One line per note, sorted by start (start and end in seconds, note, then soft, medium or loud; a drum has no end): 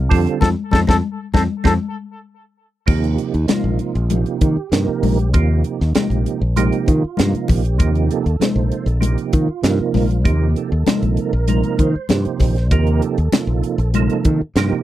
0.09 0.26 F2 medium
0.09 0.41 D3 medium
0.09 0.41 G3 medium
0.09 0.40 C4 medium
0.09 0.39 F4 medium
0.09 0.42 A4 medium
0.09 kick loud
0.09 open hi-hat medium
0.09 muted conga soft
0.27 closed hi-hat soft
0.41 0.54 F2 medium
0.41 0.51 C4 medium
0.41 0.51 D#4 medium
0.41 0.51 F4 medium
0.41 0.49 A4 medium
0.41 kick medium
0.41 snare medium
0.41 high conga medium
0.71 0.84 F2 medium
0.71 0.83 C4 medium
0.71 0.83 D#4 medium
0.71 0.83 F4 medium
0.71 0.79 A4 medium
0.71 kick medium
0.71 snare medium
0.71 high conga medium
0.87 1.00 F2 medium
0.87 0.98 C4 medium
0.87 0.97 D#4 medium
0.87 0.98 F4 medium
0.87 0.96 A4 medium
0.87 kick medium
0.87 snare medium
0.87 high conga medium
1.33 1.46 F2 medium
1.33 1.45 C4 medium
1.33 1.44 D#4 medium
1.33 1.44 F4 medium
1.33 1.41 A4 medium
1.33 kick medium
1.33 snare medium
1.33 high conga loud
1.64 1.77 F2 medium
1.64 1.74 C4 medium
1.64 1.74 D#4 medium
1.64 1.74 F4 medium
1.64 1.73 A4 medium
1.64 kick medium
1.64 snare medium
1.64 high conga loud
2.86 3.16 D#2 medium
2.86 3.33 C3 medium
2.86 3.33 F3 medium
2.86 3.34 A#3 medium
2.86 3.17 D#4 medium
2.86 3.34 G4 medium
2.86 kick medium
2.86 crash medium
2.86 muted conga soft
3.04 closed hi-hat soft
3.18 3.47 D#4 medium
3.18 closed hi-hat medium
3.34 3.48 D#2 medium
3.34 closed hi-hat soft
3.47 3.95 C3 medium
3.47 3.95 F3 medium
3.47 3.95 A#3 medium
3.47 3.95 D#4 medium
3.47 3.79 F4 medium
3.47 muted fingered electric bass stroke soft
3.47 snare medium
3.47 closed hi-hat medium
3.47 muted conga soft
3.47 high conga medium
3.64 3.78 A#1 medium
3.79 4.38 F4 medium
3.79 muted fingered electric bass stroke soft
3.79 closed hi-hat medium
3.95 4.23 A#1 medium
3.95 closed hi-hat soft
4.09 4.57 C3 medium
4.09 4.57 F3 medium
4.09 4.57 A#3 medium
4.09 4.57 D#4 medium
4.09 4.42 G4 medium
4.09 closed hi-hat medium
4.09 muted conga soft
4.09 high conga medium
4.26 closed hi-hat soft
4.41 4.56 D#3 medium
4.41 5.30 G4 loud
4.41 kick medium
4.41 closed hi-hat medium
4.41 muted conga soft
4.57 muted fingered electric bass stroke soft
4.71 4.86 G2 medium
4.71 5.18 C3 medium
4.71 5.18 F3 medium
4.71 5.18 A#3 medium
4.71 5.19 D#4 medium
4.71 5.19 A#4 medium
4.71 snare loud
4.71 closed hi-hat medium
4.88 muted fingered electric bass stroke soft
5.03 5.34 A#1 medium
5.03 open hi-hat medium
5.03 high conga medium
5.19 closed hi-hat soft
5.34 5.62 D#2 medium
5.34 5.80 C3 medium
5.34 5.80 F3 medium
5.34 5.80 A#3 medium
5.34 5.63 D#4 medium
5.34 5.64 F4 medium
5.34 5.80 G4 medium
5.34 kick medium
5.34 closed hi-hat medium
5.34 muted conga soft
5.64 5.94 D#4 medium
5.64 closed hi-hat medium
5.81 5.94 D#2 medium
5.81 snare soft
5.94 6.41 C3 medium
5.94 6.41 F3 medium
5.94 6.41 A#3 medium
5.94 6.42 D#4 medium
5.94 6.42 G4 medium
5.94 muted fingered electric bass stroke soft
5.94 snare loud
5.94 closed hi-hat medium
5.94 muted conga soft
5.94 high conga medium
6.10 6.24 A#1 medium
6.10 closed hi-hat soft
6.26 muted fingered electric bass stroke soft
6.26 closed hi-hat medium
6.41 6.69 A#1 medium
6.56 7.03 C3 medium
6.56 7.03 F3 medium
6.56 7.03 A#3 medium
6.56 7.03 D#4 medium
6.56 7.03 G4 loud
6.56 closed hi-hat medium
6.56 muted conga soft
6.56 high conga medium
6.72 closed hi-hat soft
6.86 7.02 D#3 medium
6.86 7.17 F4 medium
6.86 kick medium
6.86 closed hi-hat medium
6.86 muted conga soft
7.04 muted fingered electric bass stroke soft
7.17 7.33 G2 medium
7.17 7.64 C3 medium
7.17 7.64 F3 medium
7.17 7.64 A#3 medium
7.17 7.64 D#4 medium
7.17 7.64 F4 medium
7.17 snare loud
7.17 closed hi-hat medium
7.17 high conga medium
7.34 muted fingered electric bass stroke soft
7.34 closed hi-hat soft
7.48 7.80 A#1 medium
7.48 7.78 G4 medium
7.48 kick medium
7.48 open hi-hat medium
7.48 low conga medium
7.65 closed hi-hat soft
7.78 8.08 D#2 medium
7.78 8.25 C3 medium
7.78 8.25 F3 medium
7.78 8.26 A#3 medium
7.78 8.26 D#4 medium
7.78 8.26 G4 medium
7.78 kick medium
7.78 closed hi-hat medium
7.78 muted conga soft
7.95 closed hi-hat soft
8.11 8.99 A4 loud
8.11 closed hi-hat medium
8.26 8.39 D#2 medium
8.26 closed hi-hat soft
8.39 8.87 C3 medium
8.39 8.87 F3 medium
8.39 8.87 A#3 medium
8.39 8.87 D#4 medium
8.39 8.87 C5 medium
8.39 muted fingered electric bass stroke soft
8.39 snare loud
8.39 closed hi-hat medium
8.39 muted conga soft
8.39 high conga medium
8.56 8.70 A#1 medium
8.72 muted fingered electric bass stroke soft
8.72 closed hi-hat medium
8.86 9.15 A#1 medium
8.86 closed hi-hat soft
9.00 9.47 C3 medium
9.00 9.48 F3 medium
9.00 9.48 A#3 medium
9.00 9.48 D#4 medium
9.00 9.04 G4 medium
9.00 closed hi-hat medium
9.00 muted conga soft
9.00 high conga medium
9.06 9.34 G4 medium
9.18 closed hi-hat soft
9.32 9.48 D#3 medium
9.32 10.21 F4 medium
9.32 kick medium
9.32 closed hi-hat medium
9.32 muted conga soft
9.48 muted fingered electric bass stroke soft
9.62 9.78 G2 medium
9.62 10.09 C3 medium
9.62 10.09 F3 medium
9.62 10.10 A#3 medium
9.62 10.10 D#4 medium
9.62 10.10 A#4 medium
9.62 snare loud
9.62 closed hi-hat medium
9.80 muted fingered electric bass stroke soft
9.94 10.25 A#1 medium
9.94 snare soft
9.94 open hi-hat medium
9.94 high conga medium
10.11 closed hi-hat soft
10.24 10.53 D#2 medium
10.24 10.71 C3 medium
10.24 10.72 F3 medium
10.24 10.71 A#3 medium
10.24 10.72 D#4 medium
10.24 10.72 G4 medium
10.24 kick loud
10.24 closed hi-hat medium
10.56 10.87 A4 medium
10.56 closed hi-hat soft
10.72 10.85 D#2 medium
10.86 11.33 C3 medium
10.86 11.33 F3 medium
10.86 11.33 A#3 medium
10.86 11.33 D#4 medium
10.86 11.34 A4 medium
10.86 muted fingered electric bass stroke soft
10.86 snare loud
10.86 closed hi-hat medium
10.86 muted conga soft
10.86 high conga medium
11.02 11.16 A#1 medium
11.02 closed hi-hat soft
11.17 11.48 A#4 medium
11.17 muted fingered electric bass stroke soft
11.17 closed hi-hat medium
11.33 11.61 A#1 medium
11.48 11.95 C3 medium
11.48 11.95 F3 medium
11.48 11.95 A#3 medium
11.48 11.95 D#4 medium
11.48 11.95 A#4 medium
11.48 closed hi-hat medium
11.48 muted conga soft
11.48 high conga medium
11.63 closed hi-hat soft
11.78 11.94 D#3 medium
11.78 12.67 C5 loud
11.78 kick medium
11.78 closed hi-hat medium
11.78 muted conga soft
11.96 muted fingered electric bass stroke soft
12.09 12.24 G2 medium
12.09 12.56 C3 medium
12.09 12.56 F3 medium
12.09 12.56 A#3 medium
12.09 12.57 D#4 medium
12.09 12.57 G4 medium
12.09 snare loud
12.09 closed hi-hat medium
12.09 high conga medium
12.25 muted fingered electric bass stroke soft
12.25 closed hi-hat soft
12.40 12.71 A#1 medium
12.40 kick medium
12.40 snare soft
12.40 open hi-hat medium
12.40 low conga medium
12.56 snare soft
12.56 closed hi-hat soft
12.71 12.99 D#2 medium
12.71 13.18 C3 medium
12.71 13.18 F3 medium
12.71 13.18 A#3 medium
12.71 13.18 D#4 medium
12.71 13.18 G4 medium
12.71 13.02 A#4 medium
12.71 kick loud
12.71 closed hi-hat medium
12.71 muted conga soft
12.87 closed hi-hat soft
13.02 13.91 A4 medium
13.02 closed hi-hat medium
13.18 13.32 D#2 medium
13.18 closed hi-hat soft
13.32 13.80 C3 medium
13.32 13.79 F3 medium
13.32 13.79 A#3 medium
13.32 13.80 D#4 medium
13.32 13.80 F4 medium
13.32 muted fingered electric bass stroke soft
13.32 snare loud
13.32 closed hi-hat medium
13.32 muted conga soft
13.32 high conga medium
13.47 13.62 A#1 medium
13.62 muted fingered electric bass stroke soft
13.62 closed hi-hat medium
13.78 14.07 A#1 medium
13.78 closed hi-hat soft
13.94 14.41 C3 medium
13.94 14.41 F3 medium
13.94 14.41 A#3 medium
13.94 14.41 D#4 medium
13.94 14.42 A4 loud
13.94 closed hi-hat medium
13.94 muted conga soft
13.94 high conga medium
14.10 closed hi-hat soft
14.25 14.40 D#3 medium
14.25 kick medium
14.25 closed hi-hat medium
14.25 muted conga soft
14.41 muted fingered electric bass stroke soft
14.56 14.70 G2 medium
14.56 14.83 C3 medium
14.56 14.83 F3 medium
14.56 14.83 A#3 medium
14.56 14.83 D#4 medium
14.56 14.83 G4 loud
14.56 snare loud
14.56 closed hi-hat medium
14.72 muted fingered electric bass stroke soft